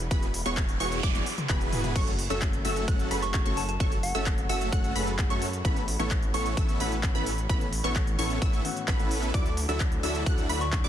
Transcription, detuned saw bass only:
0.11 E1
0.46 E1
0.80 E1
1.03 E1
1.49 E1
1.96 F#1
2.30 F#1
2.65 F#1
2.88 F#1
3.11 F#1
3.46 F#1
3.80 F#1
4.15 F#1
4.49 F#1
4.72 F#1
4.96 F#1
5.30 F#2
5.65 A1
5.99 A1
6.34 A1
6.57 A1
6.80 A1
7.15 A1
7.49 A1
7.84 A1
8.19 A1
8.42 A1
8.88 A1
9.34 D2
9.69 D2
10.03 D2
10.26 D2
10.49 D2
10.84 D2

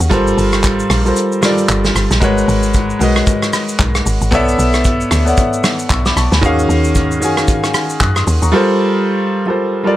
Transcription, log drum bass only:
0.00 D#2
0.11 G1
0.38 G1
0.90 A#1
1.69 G1
1.95 G1
2.11 A#1
2.22 G#1
2.48 G#1
3.01 B1
3.79 B1
4.06 G#1
4.21 G#1
4.32 B1
4.59 B1
5.11 D2
5.90 B1
6.17 B1
6.32 D2
6.43 D#2
6.69 D#2
7.22 F#2
8.01 F#2
8.27 D#2
8.42 D#2

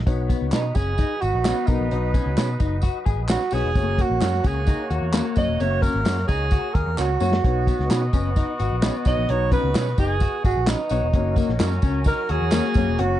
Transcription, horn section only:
0.98 F#3 D#4 B4
3.75 A#3 F#4 C#5
7.44 B3 F#4 D#5
11.13 F#3 C#4 A#4

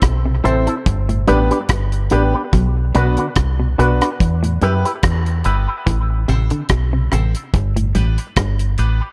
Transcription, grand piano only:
0.44 C4 E4 A4 C5
1.28 B3 D4 G4 B4
1.51 G4 B4
2.11 B3 D4 G4 B4
2.94 B3 D4 F#4 B4
3.78 B3 D4 F#4 B4
4.62 B3 E4 G4 B4
4.85 G4 B4
5.45 B3 E4 G4 B4
6.28 C4 E4 A4 C5
7.12 C4 E4 A4 C5
7.95 B3 D4 G4 B4
8.19 G4 B4
8.78 B3 D4 G4 B4

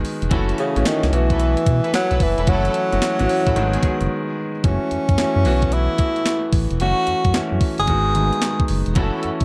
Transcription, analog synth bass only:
0.22 E1
0.31 F#1
0.76 A1
1.03 C#2
1.12 B1
1.67 B2
2.11 B1
2.20 F#1
2.38 E1
2.48 F#1
2.93 F#1
3.20 A1
3.47 A1
3.57 G#1
3.83 F#1
4.01 F#1
4.64 F#1
4.91 F#2
5.09 F#2
5.18 F#2
5.36 F#2
5.45 B1
6.53 A1
6.71 E1
6.80 F#1
7.07 F#2
7.25 F#2
7.34 F#2
7.52 F#2
7.79 F#1
7.88 G#1
8.70 F#1
8.87 E1
8.96 F#1
9.24 F#2
9.41 F#2

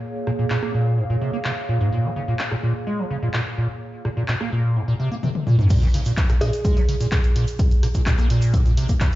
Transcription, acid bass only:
0.27 A#2
0.39 A#2
0.50 A#2
0.62 A#3
0.74 A#2
0.98 G#2
1.10 A#2
1.21 C3
1.33 A#3
1.45 C3
1.69 A#2
1.81 G#2
1.92 A#2
2.04 F3
2.16 C#3
2.28 A#2
2.52 A#2
2.63 A#2
2.87 G#3
2.99 F3
3.10 C#3
3.22 A#2
3.34 A#2
3.58 A#2
4.05 A#2
4.17 A#2
4.29 A#2
4.41 A#3
4.52 A#2
4.76 G#2
4.88 A#2
5.00 C3
5.12 A#3
5.23 C3
5.47 A#2
5.59 G#2
5.70 A#2
5.82 F3
5.94 C#3
6.06 A#2
6.29 A#2
6.41 A#2
6.65 G#3
6.77 F3
6.88 C#3
7.00 A#2
7.12 A#2
7.36 A#2
7.83 A#2
7.95 A#2
8.07 A#2
8.19 A#3
8.30 A#2
8.54 G#2
8.66 A#2
8.77 C3
8.89 A#3
9.01 C3

